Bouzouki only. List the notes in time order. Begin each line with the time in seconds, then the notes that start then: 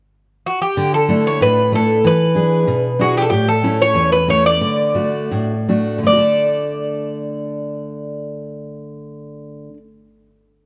0.46 F#4
0.62 G4
0.94 A4
1.27 C#5
1.42 B4
1.75 A4
2.07 B4
3.01 F#4
3.17 G4
3.22 A4
3.30 G4
3.48 A4
3.82 C#5
4.12 B4
4.30 C#5
4.46 D5
6.07 D5